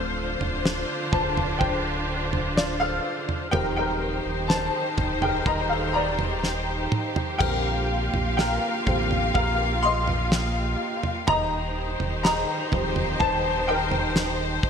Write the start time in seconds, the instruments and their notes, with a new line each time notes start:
Already playing: sub bass D1, string section D3 D4 F4 C5, upright piano F3 A3 C4 A4 F5
0.40 sub bass D1, floor tom
0.66 snare
1.12 sub bass D1, upright piano C5 A5, kick, floor tom
1.37 floor tom
1.59 upright piano C5 G5, kick, floor tom
2.33 floor tom
2.56 upright piano F4 D5, snare
2.80 upright piano A4 F5
3.29 floor tom
3.51 sub bass D#1, string section D#3 D#4 G4 C5, upright piano F3 G3 C4 A#4 G5, floor tom
3.76 upright piano A#4 G5
4.26 sub bass D#1
4.48 upright piano C5 A5, snare
4.98 sub bass D1, kick, floor tom
5.22 upright piano A#4 G5, floor tom
5.46 sub bass D#1, upright piano D#5 A#5, kick, floor tom
5.69 upright piano A4 F5
5.93 upright piano D5 A#5
6.19 floor tom
6.44 snare
6.92 mid tom
7.16 floor tom
7.38 sub bass A#1, upright piano D3 G3 C4 A#4 G5, string section A#3 F4 F5, kick, floor tom, crash
8.13 sub bass A#1, floor tom
8.37 upright piano A#4 G5, snare
8.87 sub bass A1, upright piano D3 G3 C4, kick, floor tom
9.11 floor tom
9.34 sub bass A#1, upright piano A#4 F5, kick, floor tom
9.83 upright piano D#5 C6
10.07 floor tom
10.32 snare
11.03 floor tom
11.27 sub bass D#1, string section D#3 D#4 G4 C5, upright piano D#5 A#5, floor tom
12.00 sub bass D#1, floor tom
12.23 upright piano D#5 A#5, snare
12.72 sub bass D1, upright piano F3 G3 C4, kick, floor tom
12.96 floor tom
13.19 sub bass D#1, upright piano C5 A5, kick, floor tom
13.68 upright piano A#4 G5
13.91 floor tom
14.16 snare
14.63 kick